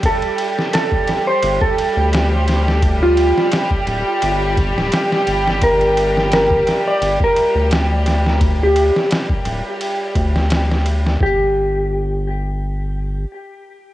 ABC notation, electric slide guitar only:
X:1
M:4/4
L:1/16
Q:"Swing 16ths" 1/4=86
K:Gm
V:1 name="Electric slide guitar"
A4 A3 c2 A3 z4 | z F3 z12 | B4 B3 d2 B3 z4 | z G3 z12 |
G16 |]